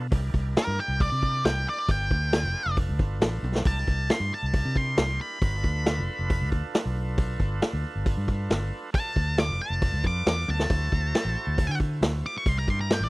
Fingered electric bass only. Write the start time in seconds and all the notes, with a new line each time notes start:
0.12 C2
0.34 C2
0.67 G2
0.88 C2
1.12 C3
1.45 C2
1.89 G1
2.11 D2
2.43 F1
2.66 F1
2.89 D2
2.99 G1
3.20 A1
3.43 B1
3.65 C2
3.88 C2
4.20 G2
4.43 C2
4.65 C3
4.97 C2
5.42 G1
5.64 D2
5.98 F1
6.19 F1
6.42 D2
6.86 B1
7.40 G1
7.73 D2
7.95 G1
8.17 G2
8.50 G1
9.16 D2
9.49 F1
9.70 F1
9.92 D2
10.04 F2
10.26 E2
10.49 D2
10.70 D2
10.92 D2
11.25 A1
11.47 D2
11.69 D3
12.01 D2
12.46 C2
12.68 G2
13.00 A#1